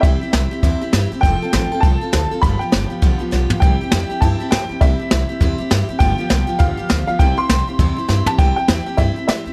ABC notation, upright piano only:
X:1
M:4/4
L:1/8
Q:"Swing" 1/4=201
K:C
V:1 name="Upright piano"
e6- e z | g4 a4 | b g2 z4 z | g4 a2 g2 |
e6- e z | g4 f3 f | g c'6 a | g g3 e2 e2 |]